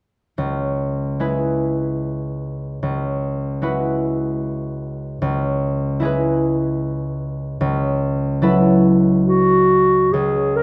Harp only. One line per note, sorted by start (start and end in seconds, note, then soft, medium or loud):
0.38 2.81 C#2 soft
1.20 3.61 G#3 soft
1.20 3.61 E4 soft
1.20 5.10 G#4 soft
1.20 3.62 B4 soft
2.83 5.20 C#2 soft
3.62 6.00 G#3 soft
3.62 5.99 E4 soft
3.62 5.25 F#4 soft
3.62 6.01 B4 soft
5.22 7.59 C#2 soft
6.00 7.63 G#3 soft
6.00 8.41 E4 soft
6.00 7.64 G#4 soft
6.05 8.42 B4 soft
7.61 10.12 C#2 soft
8.42 10.17 F#3 soft
8.42 10.63 E4 soft
8.42 10.18 A4 soft
8.42 10.18 B4 soft
10.14 10.63 C#2 soft